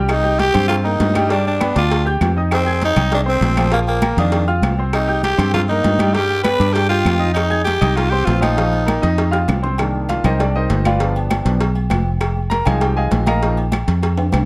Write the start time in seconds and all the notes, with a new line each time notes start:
Already playing: C2
0.09 D#4, cowbell, high conga, low agogo, claves
0.23 G4 G5 G6, high conga
0.39 G4, cowbell, high conga, low timbale, low agogo
0.54 G2 C4 C5 C6, cowbell, high conga, low conga, low agogo, claves
0.68 F4, cowbell, high conga, low agogo
0.84 A#3 D#4 A#4 A#5, high conga
1.00 G2, cowbell, high conga, low timbale, low agogo
1.14 G3 G4 G5, cowbell, high conga, low agogo, claves
1.29 G3 D4 G4 G5, cowbell, high conga
1.45 D4, high conga, low agogo
1.60 B3 B4 B5, cowbell, high conga, low timbale, low agogo, claves
1.75 D2 D4 F4 D5 D6, cowbell, high conga
1.91 cowbell, high conga, low agogo
2.05 G4 G5 G6, high conga, low agogo
2.21 F2, cowbell, high conga, low timbale, low agogo, claves
2.36 D#4 D#5 D#6, high conga
2.51 C4, cowbell, high conga, low agogo, claves
2.66 G#4 G#5 G#6, high conga
2.81 D#4, cowbell, high conga, low timbale, low agogo
2.96 C2 D#4 D#5 D#6, cowbell, high conga, low conga, low agogo, claves
3.12 D4, cowbell, high conga, low agogo
3.25 C4 C5 C6, high conga
3.41 A#1, cowbell, high conga, low timbale, low agogo
3.57 F3 F4 F5, cowbell, high conga, low agogo, claves
3.72 F3 A#3 F4 F5, cowbell, high conga
3.87 A#3, high conga, low agogo
4.02 A#3 A#4 A#5, cowbell, high conga, low timbale, low agogo, claves
4.17 F2 D#3 D4 F5 D#6, cowbell, high conga
4.32 cowbell, high conga, low agogo
4.48 F4 F5 F6, high conga, low agogo
4.62 C2, cowbell, high conga, low timbale, low agogo, claves
4.78 C4 C5 C6, high conga
4.93 D#4, cowbell, high conga, low agogo, claves
5.07 G4 G5 G6, high conga
5.23 G4, cowbell, high conga, low timbale, low agogo
5.38 G2 C4 C5 C6, cowbell, high conga, low conga, low agogo, claves
5.54 F4, cowbell, high conga, low conga, low agogo
5.69 A#3 D#4 A#4 A#5, high conga
5.84 G2, cowbell, high conga, low timbale, low agogo
5.99 G3 G4 G5, cowbell, high conga, low agogo, claves
6.14 G3 G4 G5, cowbell
6.29 high conga, low agogo
6.43 B3 B4 B5, cowbell, high conga, low timbale, low agogo, claves
6.59 G2 D4 D5 D6, cowbell, high conga
6.73 G4, cowbell, high conga, low agogo
6.89 F4 G4 G5 G6, high conga, low agogo
7.05 F2, cowbell, high conga, low timbale, low agogo, claves
7.19 D#4 D#5 D#6, high conga
7.34 D#4, cowbell, high conga, low agogo, claves
7.50 G#4 G#5 G#6, high conga
7.64 G4, cowbell, high conga, low timbale, low agogo
7.81 C2 D#4 D#5 D#6, cowbell, high conga, low conga, low agogo, claves
7.96 F4, cowbell, high conga, low agogo
8.10 C4 G4 C5 C6, high conga
8.25 A#1 F4, cowbell, high conga, low timbale, low agogo
8.41 F3 D#4 F4 F5, cowbell, high conga, low agogo, claves
8.57 F3 F4 F5, cowbell, high conga
8.73 high conga, low agogo
8.86 A#3 A#4 A#5, cowbell, high conga, low timbale, low agogo, claves
9.02 F2 D#4 D#5 D#6, cowbell, high conga
9.18 cowbell, high conga, low agogo
9.31 F4 F5 F6, high bongo, high conga, low agogo
9.48 C2, cowbell, low bongo, high conga, low timbale, low agogo, claves
9.62 C4 C5 C6, low bongo, high conga
9.78 D#3 A#3 D4, cowbell, high conga, low agogo, claves
9.95 high conga
10.09 F4 F5, cowbell, high conga, low timbale, low agogo
10.24 C2 D#4 A#4 C5 D#5, cowbell, high conga, low conga, low agogo, claves
10.40 D4 D5, cowbell, high conga, low agogo
10.55 D#4 A#4 C5 D#5, high conga
10.70 G1, cowbell, high conga, low timbale, low agogo
10.85 F4 B4 D5 F5, cowbell, high conga, low agogo, claves
10.99 F3 B3 D4, cowbell, high conga
11.16 high conga, low agogo
11.30 cowbell, high conga, low timbale, low agogo, claves
11.45 B1 F3 B3 D4, cowbell, high conga
11.60 cowbell, high conga, low agogo
11.75 high conga, low agogo
11.90 F1, cowbell, high conga, low timbale, low agogo, claves
12.06 high conga
12.21 cowbell, high conga, low agogo, claves
12.37 high conga
12.50 A#4 A#5, cowbell, high conga, low timbale, low agogo
12.65 C2 F3 G#3 D#4 G#4 D#5 F5 G#5, cowbell, high conga, low conga, low agogo, claves
12.81 G4 G5, cowbell, high conga, low agogo
12.97 G#4 D#5 F5 G#5, high conga
13.11 A#1, cowbell, high conga, low timbale, low agogo
13.26 A#4 D#5 F5 A#5, cowbell, high conga, low agogo, claves
13.42 F3 A#3 D#4, cowbell, high conga
13.57 high conga, low agogo
13.72 cowbell, high conga, low timbale, low agogo, claves
13.87 F2, cowbell, high conga
14.03 cowbell, high conga, low agogo
14.17 high conga, high timbale, low agogo
14.32 C2, cowbell, high conga, high timbale, low agogo, claves